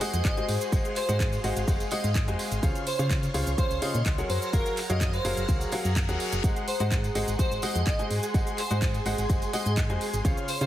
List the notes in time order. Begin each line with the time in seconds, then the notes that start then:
Already playing: F#4 G#4 C5 F#5 G#5 C6
0.01 G#3 F#4 G#4 C5 D#5 F#5, open hi-hat, tambourine
0.13 F2, closed hi-hat, tambourine, cabasa
0.25 G#1 D#5, kick, clap, closed hi-hat, tambourine, cabasa
0.37 G#3 F#4 G#4 C5 D#5 G#5, closed hi-hat, cabasa
0.49 G#2, open hi-hat, tambourine
0.61 closed hi-hat, tambourine, cabasa
0.72 G#1 G#3 F#4 G#4 C5 D#5 F5 F#5, kick, closed hi-hat, tambourine, cabasa
0.85 closed hi-hat, cabasa
0.96 C5, clap, open hi-hat, tambourine
1.09 G#2 G#3 F#4 G#4 C5 D#5 F#5, closed hi-hat, tambourine, cabasa
1.20 kick, clap, closed hi-hat, tambourine, cabasa
1.33 closed hi-hat, tambourine, cabasa
1.44 G#1 G#3 F#4 G#4 C5 D#5 F#5, open hi-hat, tambourine
1.56 G#1, closed hi-hat, tambourine, cabasa
1.68 F#1 G#3 F#4 G#4 C5 D#5 F#5, kick, closed hi-hat, tambourine, cabasa
1.80 closed hi-hat, tambourine, cabasa
1.91 G#3 F#4 G#4 C5 D#5 F#5, open hi-hat, tambourine
2.04 G#2 D#5, closed hi-hat, tambourine, cabasa
2.15 kick, clap, closed hi-hat, tambourine, cabasa
2.28 F2 G#3 F#4 G#4 C5 D#5 G#5, closed hi-hat, cabasa
2.39 open hi-hat, tambourine
2.52 G#1, closed hi-hat, cabasa
2.63 C#2 C#3 F4 G#4 C5 C#5 F5 F6, kick, closed hi-hat, tambourine, cabasa
2.75 closed hi-hat, cabasa
2.87 C5, open hi-hat, tambourine
2.99 C#3 F4 G#4 C5 C#5 F5, closed hi-hat, cabasa
3.10 kick, clap, closed hi-hat, tambourine, cabasa
3.17 C6
3.23 closed hi-hat, tambourine, cabasa
3.34 C#2 C#3 F4 G#4 C5 C#5 F5, open hi-hat, tambourine
3.47 C#2, closed hi-hat, tambourine, cabasa
3.58 C#3 F4 G#4 C5 C#5 F5, kick, closed hi-hat, tambourine, cabasa
3.71 C#2, closed hi-hat, tambourine, cabasa
3.82 C#3 F4 G#4 C5 C#5 D#5 F5, open hi-hat, tambourine
3.94 A#2, closed hi-hat, tambourine, cabasa
4.06 C#2, kick, clap, closed hi-hat, tambourine, cabasa
4.18 F#3 F#4 G#4 A#4 C#5 F#5, closed hi-hat, cabasa
4.29 F#2 G#4 C5 F#5 G#6 A#6, open hi-hat, tambourine
4.42 C5, closed hi-hat, tambourine, cabasa
4.53 F#1 F#3 F#4 G#4 A#4 C#5 F5, kick, closed hi-hat, tambourine, cabasa
4.66 closed hi-hat, tambourine, cabasa
4.77 clap, open hi-hat, tambourine
4.90 F#2 F#3 F#4 G#4 A#4 C#5 D#5 F5, closed hi-hat, tambourine, cabasa
5.01 D#5 A#5, kick, clap, closed hi-hat, tambourine, cabasa
5.13 C5, closed hi-hat, tambourine, cabasa
5.25 F#1 F#3 F#4 G#4 A#4 C#5 F5, open hi-hat, tambourine
5.37 F#1, closed hi-hat, tambourine, cabasa
5.48 C#2 F#3 F#4 G#4 A#4 C#5 F5, kick, closed hi-hat, tambourine, reverse cymbal, cabasa
5.61 closed hi-hat, tambourine, cabasa
5.72 F#3 F#4 G#4 A#4 C#5 F5, open hi-hat, tambourine
5.85 F#2, closed hi-hat, tambourine, cabasa
5.96 kick, clap, closed hi-hat, tambourine, cabasa
6.09 D#2 F#3 F#4 G#4 A#4 C#5 F#5, closed hi-hat, tambourine, cabasa
6.20 open hi-hat, tambourine
6.32 F#1, closed hi-hat, tambourine, cabasa
6.44 G#1 G#3 F#4 G#4 C5 D#5 F#5 C6, kick, closed hi-hat, tambourine, cabasa
6.56 closed hi-hat, cabasa
6.61 F#5
6.68 C5, open hi-hat, tambourine
6.80 G#2 G#3 F#4 G#4 C5 D#5 F#5, closed hi-hat, tambourine, cabasa
6.91 kick, clap, closed hi-hat, tambourine, cabasa
7.04 closed hi-hat, tambourine, cabasa
7.15 G#1 G#3 F#4 G#4 C5 D#5 F#5, open hi-hat, tambourine
7.28 G#1, closed hi-hat, tambourine, cabasa
7.35 C6
7.39 G#3 F#4 G#4 C5 D#5 F#5, kick, closed hi-hat, tambourine, cabasa
7.51 G#1, closed hi-hat, tambourine, cabasa
7.62 G#3 F#4 G#4 C5 D#5 F#5, open hi-hat, tambourine
7.75 F2, closed hi-hat, tambourine, cabasa
7.87 G#1 D#5, kick, clap, closed hi-hat, tambourine, cabasa
7.99 G#3 F#4 G#4 C5 D#5 G#5, closed hi-hat, cabasa
8.11 G#2, open hi-hat, tambourine
8.23 closed hi-hat, tambourine, cabasa
8.34 G#1 G#3 F#4 G#4 C5 D#5 F#5 G#5, kick, closed hi-hat, tambourine, cabasa
8.47 closed hi-hat, cabasa
8.58 C5, clap, open hi-hat, tambourine
8.71 G#2 G#3 F#4 G#4 C5 D#5 F#5, closed hi-hat, tambourine, cabasa
8.82 kick, clap, closed hi-hat, tambourine, cabasa
8.94 closed hi-hat, tambourine, cabasa
9.06 G#1 G#3 F#4 G#4 C5 D#5 F#5, open hi-hat, tambourine
9.18 G#1, closed hi-hat, tambourine, cabasa
9.29 F#1 G#3 F#4 G#4 C5 D#5 F#5, kick, closed hi-hat, tambourine, cabasa
9.42 closed hi-hat, tambourine, cabasa
9.53 G#3 F#4 G#4 C5 D#5 F#5, open hi-hat, tambourine
9.66 G#2 D#5, closed hi-hat, tambourine, cabasa
9.77 kick, clap, closed hi-hat, tambourine, cabasa
9.90 F2 G#3 F#4 G#4 C5 D#5 G#5, closed hi-hat, cabasa
10.01 open hi-hat, tambourine
10.14 G#1, closed hi-hat, tambourine, cabasa
10.25 C#2 C#3 F4 G#4 C5 C#5 F5 F6, kick, closed hi-hat, tambourine, cabasa
10.37 closed hi-hat, cabasa
10.48 C5, open hi-hat, tambourine
10.59 C#3 F4 G#4 C5 C#5 F5, closed hi-hat, cabasa